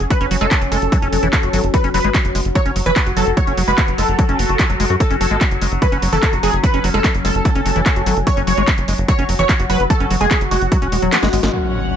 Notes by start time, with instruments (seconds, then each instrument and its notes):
Already playing: synth drone F#3 C#4
0.00 analog synth bass F#1, closed hi-hat
0.10 acid bass F#3, supersaw synth B4, kick, closed hi-hat
0.21 analog synth bass F#1, acid bass C#4, closed hi-hat
0.31 analog synth bass F#1, acid bass F#3, open hi-hat
0.41 analog synth bass F#1, acid bass G#3, supersaw synth A4, closed hi-hat
0.51 acid bass A3, kick, clap, closed hi-hat
0.62 analog synth bass F#1, closed hi-hat
0.72 analog synth bass F#1, acid bass G#3, supersaw synth A4, open hi-hat
0.82 analog synth bass F#1, closed hi-hat
0.92 acid bass F#3, kick, closed hi-hat
1.02 analog synth bass F#1, acid bass C#4, closed hi-hat
1.13 analog synth bass F#1, acid bass F#3, open hi-hat
1.23 analog synth bass F#1, acid bass E3, closed hi-hat
1.33 acid bass F#3, kick, clap, closed hi-hat
1.43 analog synth bass F#1, acid bass F#4, closed hi-hat
1.53 analog synth bass G#1, acid bass F#3, open hi-hat
1.64 analog synth bass F#1, closed hi-hat
1.74 acid bass F#3, synth drone F#4, supersaw synth B4, kick, closed hi-hat
1.84 analog synth bass F#1, acid bass C#4, closed hi-hat
1.94 analog synth bass F#1, acid bass F#3, supersaw synth B4, open hi-hat
2.04 analog synth bass G#1, acid bass G#3, closed hi-hat
2.15 acid bass A3, kick, clap, closed hi-hat
2.25 analog synth bass F#1, closed hi-hat
2.35 analog synth bass F#1, acid bass G#3, open hi-hat
2.45 analog synth bass F#1, closed hi-hat
2.55 acid bass F#3, supersaw synth C#5, kick, closed hi-hat
2.66 analog synth bass F#1, acid bass C#4, closed hi-hat
2.76 analog synth bass F#1, acid bass F#3, open hi-hat
2.86 analog synth bass F#1, acid bass E3, supersaw synth B4, closed hi-hat
2.96 acid bass F#3, kick, clap, closed hi-hat
3.06 analog synth bass F#1, acid bass F#4, closed hi-hat
3.17 analog synth bass F#1, acid bass F#3, supersaw synth A4, open hi-hat
3.27 analog synth bass F#1, closed hi-hat
3.37 acid bass F#3, supersaw synth C#5, kick, closed hi-hat
3.47 analog synth bass F#1, acid bass C#4, closed hi-hat
3.57 analog synth bass F#1, acid bass F#3, open hi-hat
3.68 analog synth bass F#1, acid bass G#3, supersaw synth B4, closed hi-hat
3.78 acid bass A3, kick, clap, closed hi-hat
3.88 analog synth bass F#1, closed hi-hat
3.98 analog synth bass F#1, acid bass G#3, supersaw synth A4, open hi-hat
4.08 analog synth bass F#1, closed hi-hat
4.19 acid bass F#3, kick, closed hi-hat
4.29 analog synth bass F#1, acid bass C#4, closed hi-hat
4.39 analog synth bass F#1, acid bass A3, open hi-hat
4.49 analog synth bass F#1, acid bass F#4, closed hi-hat
4.59 acid bass F#4, kick, clap, closed hi-hat
4.70 analog synth bass F#1, acid bass F#3, closed hi-hat
4.80 analog synth bass F#1, acid bass G#3, open hi-hat
4.90 analog synth bass F#2, acid bass F#4, closed hi-hat
5.00 acid bass F#3, synth drone C#4, supersaw synth A4, kick, closed hi-hat
5.11 analog synth bass F#1, acid bass C#4, closed hi-hat
5.21 analog synth bass F#1, acid bass F#3, supersaw synth A4, open hi-hat
5.31 analog synth bass G#1, acid bass G#3, closed hi-hat
5.41 acid bass A3, kick, clap, closed hi-hat
5.51 analog synth bass F#1, closed hi-hat
5.62 analog synth bass F#1, acid bass G#3, open hi-hat
5.72 analog synth bass F#1, closed hi-hat
5.82 acid bass F#3, supersaw synth B4, kick, closed hi-hat
5.92 analog synth bass F#1, acid bass C#4, closed hi-hat
6.02 analog synth bass F#1, acid bass F#3, open hi-hat
6.13 analog synth bass F#1, acid bass E3, supersaw synth A4, closed hi-hat
6.23 acid bass F#3, kick, clap, closed hi-hat
6.33 analog synth bass F#1, acid bass F#4, closed hi-hat
6.43 analog synth bass F#1, acid bass F#3, supersaw synth G#4, open hi-hat
6.53 analog synth bass F#1, closed hi-hat
6.64 acid bass F#3, supersaw synth B4, kick, closed hi-hat
6.74 analog synth bass F#1, acid bass C#4, closed hi-hat
6.84 analog synth bass F#1, acid bass F#3, open hi-hat
6.94 analog synth bass F#1, acid bass G#3, supersaw synth A4, closed hi-hat
7.04 acid bass A3, kick, clap, closed hi-hat
7.15 analog synth bass F#1, closed hi-hat
7.25 analog synth bass F#1, acid bass G#3, supersaw synth A4, open hi-hat
7.35 analog synth bass F#1, closed hi-hat
7.45 acid bass F#3, kick, closed hi-hat
7.55 analog synth bass F#1, acid bass C#4, closed hi-hat
7.66 analog synth bass F#1, acid bass F#3, open hi-hat
7.76 analog synth bass F#1, acid bass E3, closed hi-hat
7.86 acid bass F#3, kick, clap, closed hi-hat
7.96 analog synth bass F#1, acid bass F#4, closed hi-hat
8.06 analog synth bass G#1, acid bass F#3, open hi-hat
8.17 analog synth bass F#1, closed hi-hat
8.27 acid bass F#3, synth drone F#4, supersaw synth C#5, kick, closed hi-hat
8.37 analog synth bass F#1, acid bass C#4, closed hi-hat
8.47 analog synth bass F#1, acid bass F#3, supersaw synth C#5, open hi-hat
8.57 analog synth bass G#1, acid bass G#3, closed hi-hat
8.68 acid bass A3, kick, clap, closed hi-hat
8.78 analog synth bass F#1, closed hi-hat
8.88 analog synth bass F#1, acid bass G#3, open hi-hat
8.98 analog synth bass F#1, closed hi-hat
9.08 acid bass F#3, supersaw synth C#5, kick, closed hi-hat
9.19 analog synth bass F#1, acid bass C#4, closed hi-hat
9.29 analog synth bass F#1, acid bass F#3, open hi-hat
9.39 analog synth bass F#1, acid bass E3, supersaw synth C#5, closed hi-hat
9.49 acid bass F#3, kick, clap, closed hi-hat
9.60 analog synth bass F#1, acid bass F#4, closed hi-hat
9.70 analog synth bass F#1, acid bass F#3, supersaw synth B4, open hi-hat
9.80 analog synth bass F#1, closed hi-hat
9.90 acid bass F#3, supersaw synth A4, kick, closed hi-hat
10.00 analog synth bass F#1, acid bass C#4, closed hi-hat
10.11 analog synth bass F#1, acid bass F#3, open hi-hat
10.21 analog synth bass F#1, acid bass G#3, supersaw synth G#4, closed hi-hat
10.31 acid bass A3, kick, clap, closed hi-hat
10.41 analog synth bass F#1, closed hi-hat
10.51 analog synth bass F#1, acid bass G#3, supersaw synth F#4, open hi-hat
10.62 analog synth bass F#1, closed hi-hat
10.72 acid bass F#3, kick, closed hi-hat
10.82 analog synth bass E1, acid bass C#4, closed hi-hat
10.92 analog synth bass E1, acid bass G#3, open hi-hat
11.02 analog synth bass E1, acid bass F#3, closed hi-hat
11.13 acid bass E3, snare, clap, closed hi-hat
11.23 analog synth bass G#1, acid bass G#3, snare, closed hi-hat
11.33 analog synth bass G#1, acid bass G#3, open hi-hat
11.43 analog synth bass G#1, acid bass G#3, snare, closed hi-hat
11.53 string section C#4, impact
11.62 string section C#5
11.67 string section F#5
11.92 string section F#4